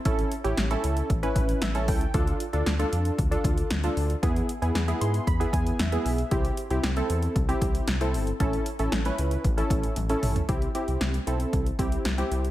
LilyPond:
<<
  \new Staff \with { instrumentName = "Synth keys" } { \time 4/4 \key c \major \tempo 4 = 115 << { r2. e''8 g''8 | r1 | r4. c'''8 b''8 gis''8 e''8 e''8 | r1 |
r1 | r1 | } \\ { <cis' e' a'>8 r16 <cis' e' g'>16 r16 <cis' e' a'>8. r16 <cis' e' b'>8. r16 <cis' e' a'>8 r16 | <d' f' a'>8 r16 <d' f' a'>16 r16 <d' f' a'>8. r16 <d' f' a'>8. r16 <d' f' a'>8 r16 | <b e' gis'>8 r16 <b e' gis'>16 r16 <b e' gis'>8. r16 <b e' gis'>8. r16 <b e' gis'>8 r16 | <c' e' g'>8 r16 <c' e' g'>16 r16 <c' e' a'>8. r16 <c' e' g'>8. r16 <c' e' a'>8 r16 |
<cis' e' a'>8 r16 <cis' e' a'>16 r16 <cis' e' b'>8. r16 <cis' e' a'>8. r16 <cis' e' a'>8 r16 | <c' e' g'>16 r16 <c' e' g'>8. r16 <c' e' a'>8. r16 <c' e' g'>8 r16 <c' e' g'>8 r16 | } >> }
  \new Staff \with { instrumentName = "Analog synth bass" } { \clef bass \time 4/4 \key c \major a,,8 r16 a,,16 a,,8 cis,8 a,,8 a,,8 a,,8 cis,8 | d,8 r16 d,16 d,8 f,8 d,8 d,8 d,8 d,8 | e,8 r16 e,16 e,8 gis,8 e,8 e,8 e,8 b,,8 | c,8 r16 c,16 c,8 e,8 c,8 c,8 c,8 g,,8 |
a,,8 r16 a,,16 a,,8 cis,8 a,,8 a,,8 a,,8 a,,8 | c,8 r16 c,16 c,8 b,,8 c,8 c,8 c,8 c,8 | }
  \new DrumStaff \with { instrumentName = "Drums" } \drummode { \time 4/4 <hh bd>16 hh16 hh16 hh16 <hh sn>16 hh16 hh16 hh16 <hh bd>16 hh16 <hh bd>16 hh16 <hh sn>16 hh16 <hho bd>16 hh16 | <hh bd>16 hh16 hh16 hh16 <hh sn>16 hh16 hh16 hh16 <hh bd>16 hh16 <hh bd>16 hh16 <hh sn>16 hh16 hho16 hh16 | <hh bd>16 hh16 hh16 hh16 <hh sn>16 hh16 hh16 hh16 <hh bd>16 hh16 <hh bd>16 hh16 <hh sn>16 hh16 hho16 hh16 | <hh bd>16 hh16 hh16 hh16 <hh sn>16 hh16 hh16 hh16 <hh bd>16 hh16 <hh bd>16 hh16 <hh sn>16 hh16 hho16 hh16 |
<hh bd>16 hh16 hh16 hh16 <hh sn>16 hh16 hh16 hh16 <hh bd>16 hh16 <hh bd>16 hh16 <hh tommh>16 hh16 <hho toml>16 <hh tomfh>16 | <hh bd>16 hh16 hh16 hh16 <hh sn>16 hh16 hh16 hh16 <hh bd>16 hh16 <hh bd>16 hh16 <hh sn>16 hh16 hh16 hh16 | }
>>